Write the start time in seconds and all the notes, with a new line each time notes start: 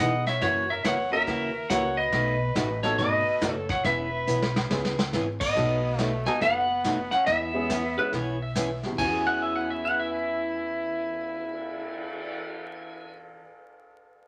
Already playing: B3 D#4 E4
0.00 B2 E3 B3 D#4 G#4 B4 D#5 F#5
0.27 C#5 E5, snare
0.41 F#2 C#3 E3 A#3 C#4 F#4 C#5, brush sweep, kick, snare
0.70 A#4 E5
0.84 E2 C#3 E3 A#3 C#4 F#4 C#5 F#5, kick, snare, hi-hat pedal
1.11 A#3 C#4 E4 F#4 A#4 E5
1.27 D#2 C#3 E3 A#3 C#4 F#4, brush sweep, kick, snare
1.70 C#2 C#3 E3 A#3 C#4 E4 F#4 A#4 C#5 F#5, kick, snare, hi-hat pedal
1.97 B4 D#5
2.12 B1 B2 F#3 A3 D#4 F#4, brush sweep, kick, snare
2.55 A1 B2 F#3 A3 D#4 F#4, kick, snare, hi-hat pedal
2.83 A3 B3 D#4 F#4 A4 C#5, snare
2.98 G#1 B2 F#3 A3 D#4 F#4 B4 D#5, brush sweep, kick, snare
3.41 F#1 B2 F#3 A3 D#4 F#4, kick, snare, hi-hat pedal
3.51 A4 C#5
3.69 C#5 F#5, kick, snare
3.84 E1 E3 B3 C#4 G#4 B4 E5, brush sweep, kick, snare
4.27 B1 E3 B3 C#4 G#4, hi-hat pedal
4.42 snare
4.56 snare
4.69 C#2 E3 G#3 B3 C#4 E4 G#4, snare
4.85 snare
4.99 snare
5.13 G#1 E3 B3 C#4 G#4, snare, hi-hat pedal
5.40 B3 D#5, kick, crash
5.55 B1 B2 F#3 A3 B3 D#4 F#4 A4, brush sweep, kick, snare
5.98 B2 F#3 A3 D#4 F#4, kick, snare, hi-hat pedal
6.04 C#5
6.25 A3 B3 D#4 F#4 A4 G#5, snare
6.41 F#1 B2 F#3 A3 B3 D#4 F#4 F#5, brush sweep, kick, snare
6.84 B2 F#3 A3 D#4 F#4, kick, snare, hi-hat pedal
7.11 C#4 F#5, snare
7.26 E2 E3 B3 C#4 G#4 E5, brush sweep, kick, snare
7.53 G#3 B3 C#4 E4 G#4
7.70 E3 B3 C#4 G#4, kick, snare, hi-hat pedal
7.97 G#3 B3 C#4 E4 B4
8.12 B1 E3 B3 C#4 G#4 C#5, brush sweep, kick, snare
8.42 E5
8.55 E3 B3 C#4 G#4, kick, snare, hi-hat pedal
8.83 E2, snare
8.92 E3
8.98 E2 E3 B3 C#4 E4 G#4 G#5, kick, crash
9.04 F#4
9.11 G#4
9.26 F#5, cymbal swell
9.42 E5
9.56 F#5
9.70 E5
9.85 F#5
10.00 E5
10.13 E5